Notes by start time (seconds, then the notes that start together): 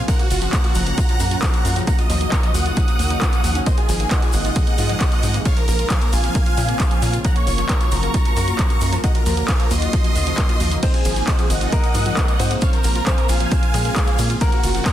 Already playing: C#3
0.08 A#2 F3 F#3 C#4 F#4 A#4 F#5, kick, closed hi-hat, shaker
0.19 A#3 F#4, closed hi-hat, shaker
0.30 F#1 F4 F#4, open hi-hat, shaker
0.42 F3 F#4, closed hi-hat, shaker
0.53 A#3 F#5 A#5, kick, clap, closed hi-hat, shaker
0.64 F4 F#4, closed hi-hat, shaker
0.75 F#1 F3 F#5 A#5, open hi-hat, shaker
0.86 A#3, closed hi-hat, shaker
0.98 F4, kick, closed hi-hat, shaker
1.09 F3, closed hi-hat, shaker
1.20 F#2 A#3, open hi-hat, shaker
1.31 F4, closed hi-hat, shaker
1.42 F3, kick, clap, closed hi-hat, shaker
1.54 A#3, closed hi-hat, shaker
1.65 F#2 F4, open hi-hat, shaker
1.76 F3, closed hi-hat, shaker
1.87 A#3 D#4 F#4 F#5 A#5, kick, closed hi-hat, shaker
1.98 F4 D#5, closed hi-hat, shaker
2.10 D#2 F3 D#5, open hi-hat, shaker
2.21 A#3 D#5, closed hi-hat, shaker
2.32 F4 A#5 C#6, kick, clap, closed hi-hat, shaker
2.43 F3 D#5, closed hi-hat, shaker
2.54 D#2 A#3 F#5 D#6, open hi-hat, shaker
2.66 F4, closed hi-hat, shaker
2.76 F3, kick, closed hi-hat, shaker
2.88 A#3, closed hi-hat, shaker
2.99 D#2 A#3, open hi-hat, shaker
3.10 D#4, closed hi-hat, shaker
3.22 F4, kick, clap, closed hi-hat, shaker
3.32 A#3, closed hi-hat, shaker
3.44 D#2 F3, open hi-hat, shaker
3.55 C#4, closed hi-hat, shaker
3.66 C3 D#3 G#3 A#3 G#4 C5 D#5, kick, closed hi-hat, shaker
3.78 F4 G#4, closed hi-hat, shaker
3.89 G#1 F3 G#4, open hi-hat, shaker
4.00 A#3 G#4, closed hi-hat, shaker
4.11 F4 D#5 F#5, kick, clap, closed hi-hat, shaker
4.22 F3 G#4, closed hi-hat, shaker
4.33 G#1 A#3 D#5 F#5, open hi-hat, shaker
4.45 F4, closed hi-hat, shaker
4.55 F3, kick, closed hi-hat, shaker
4.67 A#3, closed hi-hat, shaker
4.78 G#2 F4, open hi-hat, shaker
4.89 F3, closed hi-hat, shaker
5.01 A#3, kick, clap, closed hi-hat, shaker
5.12 F4, closed hi-hat, shaker
5.23 G#2 F3, open hi-hat, shaker
5.34 A#3, closed hi-hat, shaker
5.45 C#3 F3 A#3 C4 F4 C#5 F5, kick, closed hi-hat, shaker
5.57 F3 A#4, closed hi-hat, shaker
5.68 A#1 A#3 A#4, open hi-hat, shaker
5.79 F4 A#4, closed hi-hat, shaker
5.90 F3 F5 G#5, kick, clap, closed hi-hat, shaker
6.01 A#3 A#4, closed hi-hat, shaker
6.13 A#1 F4 F5 G#5, open hi-hat, shaker
6.24 F3, closed hi-hat, shaker
6.35 A#3, kick, closed hi-hat, shaker
6.46 F4, closed hi-hat, shaker
6.57 A#2 F3, open hi-hat, shaker
6.69 A#3, closed hi-hat, shaker
6.80 F4, kick, clap, closed hi-hat, shaker
6.91 F3, closed hi-hat, shaker
7.02 A#2 A#3, open hi-hat, shaker
7.13 F4, closed hi-hat, shaker
7.24 F3 F#3 F#4 A#4 F#5 A#5, kick, closed hi-hat, shaker
7.36 A#3 C#5, closed hi-hat, shaker
7.47 F#1 F4 C#5, open hi-hat, shaker
7.58 F3 C#5, closed hi-hat, shaker
7.69 A#3 A#5 C#6, kick, clap, closed hi-hat, shaker
7.81 F4 C#5, closed hi-hat, shaker
7.92 F#1 F3 A#5 C#6, open hi-hat, shaker
8.03 A#3, closed hi-hat, shaker
8.14 F4, kick, closed hi-hat, shaker
8.25 F3, closed hi-hat, shaker
8.37 F#2 A#3, open hi-hat, shaker
8.48 F4, closed hi-hat, shaker
8.59 F3, kick, clap, closed hi-hat, shaker
8.70 A#3, closed hi-hat, shaker
8.81 F#2 F4, open hi-hat, shaker
8.92 F3, closed hi-hat, shaker
9.04 C#3 A#3 D#4 F#4 D#5 F#5, kick, closed hi-hat, shaker
9.14 F4 A#4, closed hi-hat, shaker
9.26 D#2 F3 A#4, open hi-hat, shaker
9.37 A#3 A#4, closed hi-hat, shaker
9.48 F4 F5 G#5, kick, clap, closed hi-hat, shaker
9.60 F3 A#4, closed hi-hat, shaker
9.71 D#2 A#3 D#5 C6, open hi-hat, shaker
9.82 F4, closed hi-hat, shaker
9.93 F3, kick, closed hi-hat, shaker
10.04 A#3, closed hi-hat, shaker
10.15 D#2 F4, open hi-hat, shaker
10.27 F3, closed hi-hat, shaker
10.37 A#3, kick, clap, closed hi-hat, shaker
10.49 F4, closed hi-hat, shaker
10.60 D#2 F3, open hi-hat, shaker
10.71 A#3, closed hi-hat, shaker
10.83 C3 D#3 G#3 C4 G#4 C5 D#5, kick, closed hi-hat, crash, shaker
10.94 F4 G#4, closed hi-hat, shaker
11.05 G#1 F3 G#4, open hi-hat, ride, shaker
11.16 A#3 G#4, closed hi-hat, shaker
11.27 F4 D#5 F#5, kick, clap, closed hi-hat, shaker
11.39 F3 G#4, closed hi-hat, shaker
11.50 G#1 A#3 D#5 F#5, open hi-hat, ride, shaker
11.61 F4, closed hi-hat, shaker
11.72 F3 A#3 A#4, kick, closed hi-hat, shaker
11.84 A#3, closed hi-hat, shaker
11.95 G#2 F4, open hi-hat, ride, shaker
12.06 F3, closed hi-hat, shaker
12.17 A#3, kick, clap, closed hi-hat, shaker
12.28 F4, closed hi-hat, shaker
12.40 G#2 F3 C4 C5, open hi-hat, ride, shaker
12.50 A#3, closed hi-hat, shaker
12.61 C#3 F3 A#3 C4 F4 C#5 F5, kick, closed hi-hat, shaker
12.73 F3 A#4, closed hi-hat, shaker
12.84 A#1 A#3 A#4, open hi-hat, ride, shaker
12.95 F4 A#4, closed hi-hat, shaker
13.07 F3 C4 C5 F5 G#5, kick, clap, closed hi-hat, shaker
13.18 A#3 A#4, closed hi-hat, shaker
13.29 A#1 F4 F5 G#5, open hi-hat, ride, shaker
13.40 F3, closed hi-hat, shaker
13.51 A#3, kick, closed hi-hat, shaker
13.63 F4, closed hi-hat, shaker
13.74 A#2 F3 G#3 G#4, open hi-hat, ride, shaker
13.85 A#3, closed hi-hat, shaker
13.96 F4, kick, clap, closed hi-hat, shaker
14.07 F3, closed hi-hat, shaker
14.19 A#2 A#3, open hi-hat, ride, shaker
14.30 F4, closed hi-hat, shaker
14.41 A#2 F3 A#3 C#4 A#4 F#5, kick, closed hi-hat, shaker
14.52 A#3 F#4, closed hi-hat, shaker
14.63 F#1 F4 F#4, open hi-hat, ride, shaker
14.75 F3 F#4, closed hi-hat, shaker
14.86 A#3 F#5 A#5, kick, clap, closed hi-hat, shaker